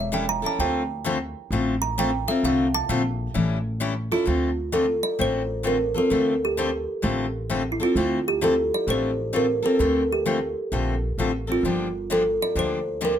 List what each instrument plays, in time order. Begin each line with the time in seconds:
Already playing: upright bass E1
0.00 kalimba E5
0.12 steel-string acoustic guitar E3 G3 C#4 E4 A4, kalimba G5
0.29 kalimba A#5
0.42 steel-string acoustic guitar C#4 E4 A4
0.46 kalimba A5
0.59 upright bass D2, steel-string acoustic guitar D3 A3 C4 F4 A4, kalimba G5
1.04 steel-string acoustic guitar D3 A3 C4 F4 A4
1.51 upright bass A1, steel-string acoustic guitar D3 A3 C4 F4 A4
1.82 kalimba A#5
1.98 steel-string acoustic guitar D3 A3 C4 F4 A4, kalimba G5
2.28 steel-string acoustic guitar C4 F4 A4, kalimba E5
2.43 upright bass C2, steel-string acoustic guitar D3 A3 C4 F4 A4, kalimba F5
2.74 kalimba A5
2.89 upright bass A#1, steel-string acoustic guitar D3 A3 C4 F4 A4
3.34 upright bass A1, steel-string acoustic guitar E3 G3 C#4 E4 A4
3.80 steel-string acoustic guitar E3 G3 C#4 E4 A4
4.12 steel-string acoustic guitar C#4 E4 A4, kalimba F4
4.26 upright bass D2, steel-string acoustic guitar D3 A3 C4 F4 A4
4.72 steel-string acoustic guitar D3 A3 C4 F4 A4, kalimba A4
5.03 kalimba D5
5.19 upright bass A1, steel-string acoustic guitar D3 A3 C4 F4 A4, kalimba C5
5.63 steel-string acoustic guitar D3 A3 C4 F4 A4, kalimba A#4
5.94 steel-string acoustic guitar C4 F4 A4, kalimba A4
6.10 upright bass D2, steel-string acoustic guitar D3 A3 C4 F4 A4
6.45 kalimba G4
6.57 steel-string acoustic guitar D3 A3 C4 F4 A4
7.02 upright bass A1, steel-string acoustic guitar D3 A3 C4 F4 A4
7.50 steel-string acoustic guitar D3 A3 C4 F4 A4
7.72 kalimba E4
7.80 steel-string acoustic guitar C4 F4 A4, kalimba F4
7.95 upright bass D2, steel-string acoustic guitar D3 A3 C4 F4 A4
8.28 kalimba G4
8.41 steel-string acoustic guitar D3 A3 C4 F4 A4, kalimba A4
8.74 kalimba D5
8.87 upright bass A1, steel-string acoustic guitar D3 A3 C4 F4 A4, kalimba C5
9.33 steel-string acoustic guitar D3 A3 C4 F4 A4, kalimba A#4
9.63 steel-string acoustic guitar C4 F4 A4, kalimba A4
9.79 upright bass D2, steel-string acoustic guitar D3 A3 C4 F4 A4
10.12 kalimba G4
10.26 steel-string acoustic guitar D3 A3 C4 F4 A4
10.72 upright bass A#1, steel-string acoustic guitar D3 A3 C4 F4 A4
11.18 upright bass A1, steel-string acoustic guitar D3 A3 C4 F4 A4
11.47 steel-string acoustic guitar C4 F4 A4
11.52 kalimba F4
11.63 upright bass G1, steel-string acoustic guitar D3 F3 A#3 D4 G4
12.10 steel-string acoustic guitar D3 F3 A#3 D4 G4, kalimba A4
12.42 kalimba D5
12.55 upright bass D2, steel-string acoustic guitar D3 F3 A#3 D4 G4, kalimba C5
13.01 steel-string acoustic guitar D3 F3 A#3 D4 G4
13.05 kalimba A#4